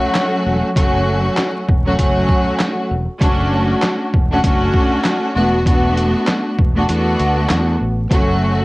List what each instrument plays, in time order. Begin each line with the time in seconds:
Already playing: string section F#3 A3 C#4 F#4
0.15 snare, clap, closed hi-hat
0.46 fretless electric bass E1
0.75 fretless electric bass F#1, string section F#3 A3 C#4 F#4, kick, closed hi-hat
1.37 snare, clap, closed hi-hat
1.69 fretless electric bass E1, kick
1.85 string section F#3 A3 C#4 F#4
1.98 fretless electric bass F#1, string section F#3 A3 C#4 F#4, kick, closed hi-hat
2.29 kick
2.59 snare, clap, closed hi-hat
2.91 fretless electric bass E1
3.19 fretless electric bass F#1, string section A3 C#4 D4 F#4, kick, closed hi-hat
3.82 snare, clap, closed hi-hat
4.14 fretless electric bass E1, kick
4.31 string section A3 C#4 D4 F#4
4.44 fretless electric bass F#1, string section A3 C#4 D4 F#4, kick, closed hi-hat
4.74 kick
5.04 snare, clap, closed hi-hat
5.34 fretless electric bass E1, string section A3 B3 D4 F#4
5.65 string section A3 B3 D4 F#4, kick, closed hi-hat
5.97 closed hi-hat
6.27 snare, clap, closed hi-hat
6.59 fretless electric bass E1, kick
6.75 string section A3 B3 D4 F#4
6.87 fretless electric bass E2, string section A3 B3 D4 F#4, closed hi-hat
7.19 fretless electric bass D2, closed hi-hat
7.49 fretless electric bass E2, snare, clap, closed hi-hat
7.81 fretless electric bass A1
8.10 fretless electric bass F#1, string section F#3 A3 C#4 F#4, kick, closed hi-hat